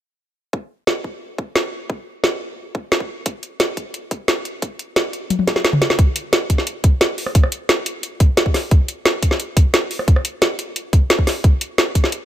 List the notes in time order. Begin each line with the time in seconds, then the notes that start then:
0.53 kick
0.87 snare
1.04 kick
1.38 kick
1.56 snare
1.90 kick
2.24 snare
2.75 kick
2.92 snare
3.00 kick
3.26 kick, closed hi-hat
3.43 closed hi-hat
3.60 snare, closed hi-hat
3.77 kick, closed hi-hat
3.94 closed hi-hat
4.11 kick, closed hi-hat
4.28 snare, closed hi-hat
4.45 closed hi-hat
4.62 kick, closed hi-hat
4.79 closed hi-hat
4.96 snare, closed hi-hat
5.13 closed hi-hat
5.30 closed hi-hat, high tom
5.39 high tom
5.47 kick, snare, closed hi-hat
5.56 snare
5.65 snare, closed hi-hat
5.73 kick, mid tom
5.82 snare, closed hi-hat
5.90 snare
5.99 kick, closed hi-hat
6.16 closed hi-hat
6.33 snare, closed hi-hat
6.50 kick, closed hi-hat
6.58 snare
6.67 closed hi-hat
6.84 kick, closed hi-hat
7.01 snare, closed hi-hat
7.18 open hi-hat
7.26 cross-stick
7.35 kick, closed hi-hat
7.43 cross-stick
7.52 closed hi-hat
7.69 snare, closed hi-hat
7.86 closed hi-hat
8.03 closed hi-hat
8.20 kick, closed hi-hat
8.37 snare, closed hi-hat
8.46 kick
8.54 snare, open hi-hat
8.71 kick, closed hi-hat
8.88 closed hi-hat
9.05 snare, closed hi-hat
9.23 kick, closed hi-hat
9.31 snare
9.40 closed hi-hat
9.57 kick, closed hi-hat
9.74 snare, closed hi-hat
9.91 open hi-hat
9.99 cross-stick
10.08 kick, closed hi-hat
10.16 cross-stick
10.25 closed hi-hat
10.42 snare, closed hi-hat
10.59 closed hi-hat
10.76 closed hi-hat
10.93 kick, closed hi-hat
11.10 snare, closed hi-hat
11.19 kick
11.27 snare, open hi-hat
11.44 kick, closed hi-hat
11.61 closed hi-hat
11.78 snare, closed hi-hat
11.95 kick, closed hi-hat
12.04 snare
12.12 closed hi-hat